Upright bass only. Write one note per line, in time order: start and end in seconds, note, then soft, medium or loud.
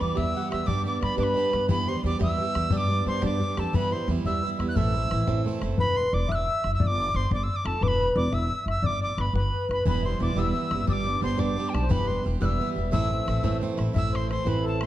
0.01 0.14 E2 medium
0.18 0.32 E2 medium
0.52 0.66 E2 medium
0.68 0.97 G2 medium
1.02 1.16 G2 loud
1.18 1.33 G2 medium
1.53 1.67 G2 medium
1.69 1.98 E2 medium
2.04 2.18 E2 medium
2.21 2.36 E2 medium
2.55 2.69 E2 medium
2.71 3.00 G2 medium
3.06 3.20 G2 medium
3.23 3.38 G2 medium
3.57 3.71 F2 medium
3.73 4.02 E2 medium
4.08 4.22 E2 loud
4.25 4.40 E2 medium
4.59 4.73 E2 medium
4.76 5.05 A1 medium
5.12 5.25 A1 loud
5.27 5.42 A1 medium
5.62 5.75 F#1 medium
5.78 6.07 E1 medium
6.13 6.26 E1 loud
6.29 6.44 E1 medium
6.64 6.78 F#1 medium
6.81 7.09 G1 medium
7.14 7.28 G1 loud
7.31 7.46 G1 medium
7.65 7.79 F1 medium
7.81 8.10 E1 medium
8.15 8.30 E1 loud
8.32 8.48 E1 medium
8.66 8.80 F#1 medium
8.82 9.12 G1 medium
9.18 9.32 G1 medium
9.33 9.49 G1 medium
9.69 9.83 F#1 medium
9.85 10.14 E1 medium
10.20 10.34 E1 loud
10.35 10.51 E1 medium
10.71 10.85 F#1 medium
10.87 11.17 G1 medium
11.22 11.36 G1 medium
11.39 11.54 G1 medium
11.74 11.88 B1 medium
11.90 12.19 E1 medium
12.26 12.39 E1 loud
12.41 12.56 E1 loud
12.76 12.90 E1 medium
12.93 13.22 A1 medium
13.28 13.41 A1 loud
13.44 13.59 A1 medium
13.78 13.92 A1 medium
13.94 14.37 A1 medium
14.45 14.86 A1 medium